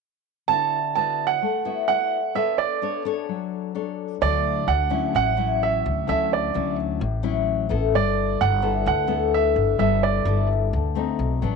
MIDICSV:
0, 0, Header, 1, 4, 480
1, 0, Start_track
1, 0, Key_signature, 2, "major"
1, 0, Tempo, 465477
1, 506, Time_signature, 4, 2, 24, 8
1, 11918, End_track
2, 0, Start_track
2, 0, Title_t, "Grand piano"
2, 0, Program_c, 0, 0
2, 494, Note_on_c, 0, 81, 96
2, 969, Note_off_c, 0, 81, 0
2, 985, Note_on_c, 0, 81, 82
2, 1308, Note_on_c, 0, 78, 86
2, 1316, Note_off_c, 0, 81, 0
2, 1922, Note_off_c, 0, 78, 0
2, 1938, Note_on_c, 0, 78, 91
2, 2429, Note_on_c, 0, 76, 88
2, 2438, Note_off_c, 0, 78, 0
2, 2662, Note_on_c, 0, 74, 84
2, 2676, Note_off_c, 0, 76, 0
2, 3112, Note_off_c, 0, 74, 0
2, 4349, Note_on_c, 0, 74, 97
2, 4824, Note_on_c, 0, 78, 89
2, 4844, Note_off_c, 0, 74, 0
2, 5304, Note_off_c, 0, 78, 0
2, 5319, Note_on_c, 0, 78, 94
2, 5806, Note_on_c, 0, 76, 85
2, 5809, Note_off_c, 0, 78, 0
2, 6266, Note_off_c, 0, 76, 0
2, 6281, Note_on_c, 0, 76, 91
2, 6499, Note_off_c, 0, 76, 0
2, 6528, Note_on_c, 0, 74, 78
2, 6966, Note_off_c, 0, 74, 0
2, 8200, Note_on_c, 0, 74, 91
2, 8671, Note_on_c, 0, 78, 95
2, 8689, Note_off_c, 0, 74, 0
2, 9136, Note_off_c, 0, 78, 0
2, 9152, Note_on_c, 0, 78, 86
2, 9596, Note_off_c, 0, 78, 0
2, 9635, Note_on_c, 0, 76, 92
2, 10082, Note_off_c, 0, 76, 0
2, 10098, Note_on_c, 0, 76, 90
2, 10345, Note_on_c, 0, 74, 83
2, 10350, Note_off_c, 0, 76, 0
2, 10792, Note_off_c, 0, 74, 0
2, 11918, End_track
3, 0, Start_track
3, 0, Title_t, "Nylon-string guitar"
3, 0, Program_c, 1, 24
3, 495, Note_on_c, 1, 50, 58
3, 500, Note_on_c, 1, 59, 47
3, 506, Note_on_c, 1, 66, 54
3, 507, Note_on_c, 1, 64, 45
3, 813, Note_off_c, 1, 59, 0
3, 815, Note_off_c, 1, 66, 0
3, 817, Note_off_c, 1, 64, 0
3, 988, Note_on_c, 1, 59, 54
3, 991, Note_on_c, 1, 64, 52
3, 996, Note_on_c, 1, 66, 60
3, 1438, Note_off_c, 1, 50, 0
3, 1466, Note_off_c, 1, 59, 0
3, 1466, Note_off_c, 1, 64, 0
3, 1467, Note_on_c, 1, 57, 62
3, 1469, Note_off_c, 1, 66, 0
3, 1702, Note_on_c, 1, 59, 54
3, 1705, Note_on_c, 1, 64, 60
3, 1705, Note_on_c, 1, 66, 58
3, 1906, Note_off_c, 1, 64, 0
3, 1907, Note_off_c, 1, 59, 0
3, 1909, Note_off_c, 1, 66, 0
3, 1946, Note_on_c, 1, 59, 42
3, 1951, Note_on_c, 1, 64, 44
3, 1957, Note_on_c, 1, 66, 50
3, 2256, Note_off_c, 1, 59, 0
3, 2259, Note_off_c, 1, 64, 0
3, 2262, Note_off_c, 1, 66, 0
3, 2405, Note_off_c, 1, 57, 0
3, 2422, Note_on_c, 1, 59, 62
3, 2426, Note_on_c, 1, 62, 54
3, 2431, Note_on_c, 1, 69, 54
3, 2434, Note_on_c, 1, 73, 55
3, 2868, Note_off_c, 1, 62, 0
3, 2872, Note_off_c, 1, 69, 0
3, 2873, Note_off_c, 1, 73, 0
3, 2907, Note_on_c, 1, 62, 57
3, 2913, Note_on_c, 1, 69, 54
3, 2918, Note_on_c, 1, 73, 60
3, 3111, Note_off_c, 1, 62, 0
3, 3112, Note_off_c, 1, 69, 0
3, 3113, Note_off_c, 1, 73, 0
3, 3146, Note_on_c, 1, 62, 61
3, 3147, Note_on_c, 1, 69, 57
3, 3159, Note_on_c, 1, 73, 72
3, 3363, Note_off_c, 1, 59, 0
3, 3391, Note_on_c, 1, 54, 59
3, 3829, Note_off_c, 1, 69, 0
3, 3831, Note_off_c, 1, 62, 0
3, 3837, Note_off_c, 1, 73, 0
3, 3864, Note_on_c, 1, 62, 48
3, 3869, Note_on_c, 1, 69, 43
3, 3871, Note_on_c, 1, 73, 53
3, 4327, Note_off_c, 1, 54, 0
3, 4328, Note_off_c, 1, 62, 0
3, 4330, Note_off_c, 1, 69, 0
3, 4332, Note_off_c, 1, 73, 0
3, 4341, Note_on_c, 1, 50, 55
3, 4345, Note_on_c, 1, 54, 58
3, 4346, Note_on_c, 1, 64, 56
3, 4824, Note_off_c, 1, 54, 0
3, 4826, Note_off_c, 1, 64, 0
3, 5052, Note_on_c, 1, 54, 59
3, 5056, Note_on_c, 1, 61, 69
3, 5062, Note_on_c, 1, 64, 70
3, 5282, Note_off_c, 1, 50, 0
3, 5293, Note_on_c, 1, 45, 54
3, 5503, Note_off_c, 1, 54, 0
3, 5505, Note_off_c, 1, 61, 0
3, 5506, Note_off_c, 1, 64, 0
3, 5533, Note_on_c, 1, 54, 54
3, 5536, Note_on_c, 1, 61, 58
3, 5542, Note_on_c, 1, 64, 66
3, 6224, Note_off_c, 1, 54, 0
3, 6224, Note_off_c, 1, 61, 0
3, 6228, Note_off_c, 1, 64, 0
3, 6238, Note_off_c, 1, 45, 0
3, 6260, Note_on_c, 1, 50, 56
3, 6265, Note_on_c, 1, 54, 55
3, 6270, Note_on_c, 1, 61, 53
3, 6278, Note_on_c, 1, 64, 56
3, 6710, Note_off_c, 1, 54, 0
3, 6711, Note_off_c, 1, 61, 0
3, 6716, Note_off_c, 1, 64, 0
3, 6745, Note_on_c, 1, 54, 59
3, 6749, Note_on_c, 1, 61, 56
3, 6755, Note_on_c, 1, 64, 61
3, 7201, Note_off_c, 1, 50, 0
3, 7217, Note_on_c, 1, 45, 46
3, 7225, Note_off_c, 1, 54, 0
3, 7226, Note_off_c, 1, 61, 0
3, 7230, Note_off_c, 1, 64, 0
3, 7455, Note_on_c, 1, 54, 65
3, 7459, Note_on_c, 1, 61, 65
3, 7463, Note_on_c, 1, 64, 68
3, 7904, Note_off_c, 1, 54, 0
3, 7906, Note_off_c, 1, 61, 0
3, 7907, Note_off_c, 1, 64, 0
3, 7931, Note_on_c, 1, 59, 66
3, 7939, Note_on_c, 1, 64, 61
3, 7943, Note_on_c, 1, 69, 70
3, 8159, Note_off_c, 1, 45, 0
3, 8178, Note_on_c, 1, 55, 52
3, 8862, Note_off_c, 1, 59, 0
3, 8864, Note_off_c, 1, 64, 0
3, 8867, Note_off_c, 1, 69, 0
3, 8889, Note_on_c, 1, 59, 65
3, 8896, Note_on_c, 1, 64, 55
3, 8898, Note_on_c, 1, 69, 66
3, 9119, Note_off_c, 1, 55, 0
3, 9125, Note_on_c, 1, 50, 52
3, 9341, Note_off_c, 1, 59, 0
3, 9342, Note_off_c, 1, 64, 0
3, 9345, Note_off_c, 1, 69, 0
3, 9356, Note_on_c, 1, 59, 72
3, 9362, Note_on_c, 1, 69, 69
3, 9363, Note_on_c, 1, 64, 55
3, 10054, Note_off_c, 1, 59, 0
3, 10055, Note_off_c, 1, 64, 0
3, 10056, Note_off_c, 1, 69, 0
3, 10072, Note_off_c, 1, 50, 0
3, 10088, Note_on_c, 1, 55, 53
3, 10094, Note_on_c, 1, 59, 53
3, 10100, Note_on_c, 1, 64, 58
3, 10101, Note_on_c, 1, 69, 57
3, 10543, Note_off_c, 1, 59, 0
3, 10544, Note_off_c, 1, 64, 0
3, 10546, Note_off_c, 1, 69, 0
3, 10586, Note_on_c, 1, 59, 57
3, 10594, Note_on_c, 1, 64, 62
3, 10601, Note_on_c, 1, 69, 57
3, 11033, Note_off_c, 1, 55, 0
3, 11063, Note_off_c, 1, 59, 0
3, 11066, Note_on_c, 1, 50, 53
3, 11067, Note_off_c, 1, 64, 0
3, 11071, Note_off_c, 1, 69, 0
3, 11293, Note_on_c, 1, 57, 59
3, 11300, Note_on_c, 1, 60, 67
3, 11308, Note_on_c, 1, 63, 65
3, 11522, Note_off_c, 1, 50, 0
3, 11740, Note_off_c, 1, 57, 0
3, 11744, Note_off_c, 1, 60, 0
3, 11748, Note_off_c, 1, 63, 0
3, 11775, Note_on_c, 1, 54, 67
3, 11782, Note_on_c, 1, 59, 60
3, 11794, Note_on_c, 1, 62, 73
3, 11918, Note_off_c, 1, 54, 0
3, 11918, Note_off_c, 1, 59, 0
3, 11918, Note_off_c, 1, 62, 0
3, 11918, End_track
4, 0, Start_track
4, 0, Title_t, "Upright bass"
4, 0, Program_c, 2, 32
4, 4349, Note_on_c, 2, 38, 92
4, 4796, Note_off_c, 2, 38, 0
4, 4821, Note_on_c, 2, 38, 90
4, 5272, Note_off_c, 2, 38, 0
4, 5307, Note_on_c, 2, 33, 85
4, 5988, Note_off_c, 2, 33, 0
4, 6040, Note_on_c, 2, 38, 86
4, 6259, Note_off_c, 2, 38, 0
4, 6278, Note_on_c, 2, 38, 88
4, 6721, Note_off_c, 2, 38, 0
4, 6757, Note_on_c, 2, 38, 85
4, 7200, Note_off_c, 2, 38, 0
4, 7230, Note_on_c, 2, 33, 91
4, 7909, Note_off_c, 2, 33, 0
4, 7950, Note_on_c, 2, 33, 84
4, 8193, Note_off_c, 2, 33, 0
4, 8193, Note_on_c, 2, 31, 89
4, 8637, Note_off_c, 2, 31, 0
4, 8675, Note_on_c, 2, 31, 92
4, 9118, Note_off_c, 2, 31, 0
4, 9139, Note_on_c, 2, 38, 95
4, 9822, Note_off_c, 2, 38, 0
4, 9857, Note_on_c, 2, 31, 80
4, 10085, Note_off_c, 2, 31, 0
4, 10101, Note_on_c, 2, 31, 84
4, 10550, Note_off_c, 2, 31, 0
4, 10573, Note_on_c, 2, 31, 93
4, 11026, Note_off_c, 2, 31, 0
4, 11066, Note_on_c, 2, 38, 85
4, 11512, Note_off_c, 2, 38, 0
4, 11538, Note_on_c, 2, 35, 81
4, 11764, Note_off_c, 2, 35, 0
4, 11778, Note_on_c, 2, 33, 80
4, 11918, Note_off_c, 2, 33, 0
4, 11918, End_track
0, 0, End_of_file